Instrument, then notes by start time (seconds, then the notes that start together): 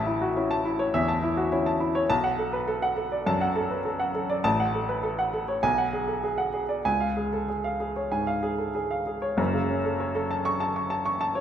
grand piano
Already playing: A1 E5 A5
0.07 E4
0.22 F#4
0.36 C#4 E4
0.51 A5
0.65 E4
0.79 C#5
0.94 E2 E5
1.08 A5
1.23 E4
1.37 F#4
1.52 C#4 E4
1.66 A5
1.80 E4
1.95 C#5
2.10 B1 A5
2.24 F#5
2.38 A4
2.53 B4
2.68 A4
2.82 F#5
2.97 A4
3.12 D5
3.26 F#2 A5
3.41 F#5
3.56 A4
3.71 B4
3.85 A4
4.00 F#5
4.15 A4
4.30 D5
4.44 A1 A5
4.60 F#5
4.75 A4
4.89 B4
5.03 A4
5.19 F#5
5.34 A4
5.48 C#5
5.63 B1 G#5
5.78 F#5
5.93 G#4
6.08 A4
6.23 G#4
6.38 F#5
6.54 G#4
6.69 D5
6.85 C#2 G#5
7.00 F5
7.17 G#4
7.33 A4
7.48 G#4
7.64 F5
7.80 G#4
7.96 C#5
8.12 G#2 G#5
8.27 F5
8.43 G#4
8.58 A4
8.75 G#4
8.91 F5
9.07 G#4
9.22 C#5
9.37 F#1 F#2
9.53 C#3
9.70 C#4
9.85 A4
10.00 C#5
10.15 A4
10.31 A5
10.45 C#6
10.60 A5
10.76 C#6
10.90 A5
11.06 C#6
11.21 A5
11.35 C#5